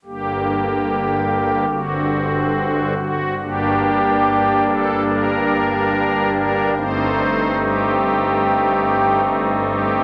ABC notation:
X:1
M:4/4
L:1/8
Q:1/4=72
K:Gm
V:1 name="Pipe organ"
z6 z ^F | G3 A B3 B | c2 G4 z G |]
V:2 name="Pipe organ" clef=bass
[G,,,G,,D,B,G]4 [G,,,G,,D,C^F]3 z | [G,,,G,,G,B,D]8 | [G,,,G,,A,CE]8 |]